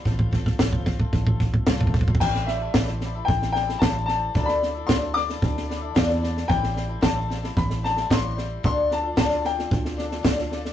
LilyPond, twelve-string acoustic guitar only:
\new Staff \with { instrumentName = "Twelve-string acoustic guitar" } { \time 4/4 \key a \minor \tempo 4 = 112 <a, f a c' f' a'>8 <a c' f' a'>8 <a, f a c' f' a'>8 <a c' f' a'>16 <a c' f' a'>8 <a c' f' a'>8. <a, f a c' f' a'>8 <a c' f' a'>16 <a c' f' a'>16 | <a, e g c' e' a'>8 <g c' e' a'>16 <g c' e' a'>16 <a, e g c' e' a'>16 <g c' e' a'>16 <g c' e' a'>16 <g c' e' a'>8. <g c' e' a'>16 <g c' e' a'>16 <a, e g c' e' a'>16 <g c' e' a'>16 <g c' e' a'>8 | <d f a d' e' a'>8 <a d' e' a'>16 <a d' e' a'>16 <d f a d' e' a'>16 <a d' e' a'>16 <a d' e' a'>16 <a d' e' a'>8. <a d' e' a'>16 <a d' e' a'>16 <d f a d' e' a'>16 <a d' e' a'>16 <a d' e' a'>8 | <a, e g c' e' a'>8 <g c' e' a'>16 <g c' e' a'>16 <a, e g c' e' a'>16 <g c' e' a'>16 <g c' e' a'>16 <g c' e' a'>8. <g c' e' a'>16 <g c' e' a'>16 <a, e g c' e' a'>8 <g c' e' a'>8 |
<d a d' f' a'>8 <a d' f' a'>16 <d' f' a'>16 <d a d' f' a'>16 <d' f' a'>16 <a d' f' a'>16 <d' f' a'>8. <a d' f' a'>16 <d' f' a'>16 <d a d' f' a'>16 <d' f' a'>16 <a d' f' a'>8 | }